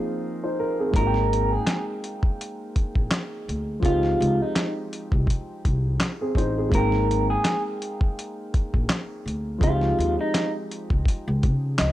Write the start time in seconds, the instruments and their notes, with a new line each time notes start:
Already playing: upright piano F3 A#3 C4 D#4 G#4
0.44 upright piano D#4 C5
0.59 upright piano A#4
0.79 upright piano C4 G#4
0.91 upright bass G#1, upright piano G#3 A#3, kick
0.95 upright piano C4 D#4, clean electric guitar A#4, closed hi-hat
1.00 upright piano F#4
1.07 upright piano G5
1.14 snare
1.33 closed hi-hat
1.52 clean electric guitar G#4
1.67 snare, clap, closed hi-hat
2.04 closed hi-hat
2.23 kick
2.41 closed hi-hat
2.76 kick, closed hi-hat
2.95 upright bass A#1, kick
3.11 snare, clap, closed hi-hat
3.48 upright bass D2, closed hi-hat
3.80 upright bass C#2, upright piano F3 G#3, kick
3.84 upright piano C4 D#4, clean electric guitar F4, closed hi-hat
3.88 upright piano G4
4.03 snare
4.20 upright bass C#2, closed hi-hat
4.42 clean electric guitar D#4
4.56 snare, clap, closed hi-hat
4.93 closed hi-hat
5.12 upright bass C2, kick
5.27 kick, closed hi-hat
5.65 upright bass C2, kick, closed hi-hat
6.00 snare, clap, closed hi-hat
6.21 upright piano C4 G#4
6.35 upright bass A1, upright piano D#4 C5, kick, closed hi-hat
6.57 upright piano C4 G#4
6.69 upright bass G#1, upright piano G#3 A#3, kick
6.73 upright piano C4 D#4, clean electric guitar A#4, closed hi-hat
6.78 upright piano G5
6.92 snare
7.11 closed hi-hat
7.30 clean electric guitar G#4
7.45 snare, clap, closed hi-hat
7.82 closed hi-hat
8.01 kick
8.19 closed hi-hat
8.54 kick, closed hi-hat
8.74 upright bass A#1, kick
8.89 snare, clap, closed hi-hat
9.26 upright bass D2, closed hi-hat
9.58 upright bass C#2, upright piano F3 G#3, kick
9.63 upright piano C4 D#4, clean electric guitar F4, closed hi-hat
9.67 upright piano G4
9.81 snare
9.98 upright bass D#2, closed hi-hat
10.21 clean electric guitar D#4
10.34 snare, clap, closed hi-hat
10.71 closed hi-hat
10.90 upright bass C#2, kick
11.05 kick, closed hi-hat
11.28 upright bass C#2
11.43 upright bass C#3, kick, closed hi-hat
11.78 upright bass C#2, upright piano D#5, snare, clap, closed hi-hat